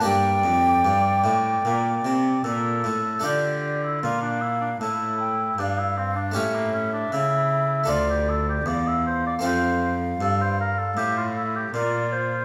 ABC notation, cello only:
X:1
M:4/4
L:1/8
Q:1/4=78
K:Gm
V:1 name="Cello" clef=bass
G,, F,, G,, A,, B,, C, B,, A,, | [K:Dm] D,2 B,,2 A,,2 G,,2 | A,,2 ^C,2 D,,2 E,,2 | F,,2 G,,2 A,,2 B,,2 |]